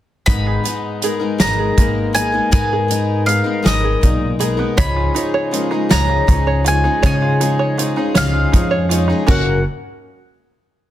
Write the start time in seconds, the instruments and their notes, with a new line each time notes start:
0.26 upright bass G#1, twelve-string acoustic guitar G#2 D#3 G#3 B3 D#4, mandolin B5, kick, closed hi-hat
0.47 five-string banjo G#4
0.64 twelve-string acoustic guitar G#3 B3 D#4, closed hi-hat
1.02 twelve-string acoustic guitar G#3 B3 D#4 A#4, five-string banjo G#4, closed hi-hat
1.20 twelve-string acoustic guitar G#3 B3 D#4 A#4
1.38 upright bass G#1, twelve-string acoustic guitar G#2 D#3 G#3 B3 D#4 A#4, mandolin A#5, snare, closed hi-hat
1.59 five-string banjo G#4
1.77 upright bass G#1, twelve-string acoustic guitar G#3 B3 D#4 A#4, steel-string acoustic guitar A#3, kick, closed hi-hat
2.13 twelve-string acoustic guitar G#3 B3 D#4 A#4, five-string banjo G#4, mandolin G#5, closed hi-hat
2.32 twelve-string acoustic guitar G#3 B3 D#4 A#4
2.51 twelve-string acoustic guitar G#2 D#3 G#3 B3 D#4 A#4, upright bass G#2, steel-string acoustic guitar B4, mandolin G#5, kick, closed hi-hat
2.73 five-string banjo G#4
2.88 twelve-string acoustic guitar G#3 B3 D#4 A#4, closed hi-hat
3.26 twelve-string acoustic guitar G#3 B3 D#4 A#4, five-string banjo G#4, mandolin F5, closed hi-hat
3.44 twelve-string acoustic guitar G#3 B3 D#4 A#4
3.62 upright bass G#1, twelve-string acoustic guitar G#2 D#3 G#3 B3 D#4 A#4, mandolin D#5, snare, closed hi-hat
3.84 five-string banjo G#4
4.01 upright bass B1, steel-string acoustic guitar A#2, twelve-string acoustic guitar G#3 D#4 A#4, kick, closed hi-hat
4.39 steel-string acoustic guitar B2, twelve-string acoustic guitar G#3 B3 D#4 A#4, five-string banjo G#4, closed hi-hat
4.57 twelve-string acoustic guitar G#3 B3 D#4 A#4, five-string banjo B3
4.77 upright piano C#2 C#3 F3 D#4 G#4 C#5, upright bass C#2, twelve-string acoustic guitar C#3 F3 G#3 C#4 D#4 G#4, harmonium C#3 F3 G#3 D#4, five-string banjo C#5, mandolin B5, kick, closed hi-hat
4.96 five-string banjo F4
5.14 upright piano F3 D#4 G#4 C#5, twelve-string acoustic guitar G#3 C#4 D#4 G#4, five-string banjo D#4, closed hi-hat
5.34 five-string banjo C#5
5.51 upright piano F3 A#3 D#4 G#4, twelve-string acoustic guitar G#3 C#4 D#4 G#4, five-string banjo F4, closed hi-hat
5.71 twelve-string acoustic guitar G#3 C#4 D#4 G#4, five-string banjo D#4
5.89 upright bass C#2, twelve-string acoustic guitar C#3 F3 G#3 C#4 D#4 G#4, upright piano F3 D#4 G#4 C#5, five-string banjo C#5, mandolin A#5, snare, closed hi-hat
6.09 five-string banjo F4
6.27 upright bass C#2, upright piano F3 D#4 G#4 C#5, twelve-string acoustic guitar G#3 C#4 D#4 G#4, five-string banjo D#4, kick, closed hi-hat
6.47 five-string banjo C#5
6.64 upright piano F3 D#4 G#4 C#5, twelve-string acoustic guitar G#3 C#4 D#4 G#4, five-string banjo F4, mandolin G#5, closed hi-hat
6.84 twelve-string acoustic guitar G#3 C#4 D#4 G#4, five-string banjo D#4
7.02 upright piano C#2 C#3 F3 D#4 G#4 C#5, twelve-string acoustic guitar C#3 F3 G#3 C#4 D#4 G#4, upright bass C#3, five-string banjo C#5, mandolin G#5, kick, closed hi-hat
7.22 five-string banjo F4
7.40 upright piano F3 D#4 G#4 D#5, twelve-string acoustic guitar G#3 C#4 D#4 G#4, five-string banjo D#4, closed hi-hat
7.59 five-string banjo C#5
7.78 upright piano F3 D#4 G#4 C#5, twelve-string acoustic guitar G#3 C#4 D#4 G#4, five-string banjo F4, closed hi-hat
7.96 twelve-string acoustic guitar G#3 C#4 D#4 G#4, five-string banjo D#4
8.15 upright bass C#2, twelve-string acoustic guitar C#3 F3 G#3 C#4 D#4 G#4, upright piano F3 D#4 G#4, five-string banjo C#5, mandolin F5, snare, closed hi-hat
8.19 upright piano C#5
8.33 five-string banjo F4
8.52 upright bass F2, upright piano F3 D#4 G#4 C#5, twelve-string acoustic guitar G#3 C#4 D#4, five-string banjo D#4, kick, closed hi-hat
8.56 twelve-string acoustic guitar G#4
8.71 five-string banjo C#5
8.89 upright piano F3 D#4 G#4 C#5, twelve-string acoustic guitar G#3 C#4 D#4 G#4, five-string banjo F4, closed hi-hat
9.08 twelve-string acoustic guitar C#4 D#4 G#4, five-string banjo D#4
9.12 twelve-string acoustic guitar G#3
9.26 upright bass F#1, upright piano F#2 F#3 F#4 A#4 C#5, harmonium C#3 F#3 A#3 F#4, twelve-string acoustic guitar F#3 A#3 C#4 A#4, five-string banjo C#4 F#4 A#4, mandolin F#5, kick, crash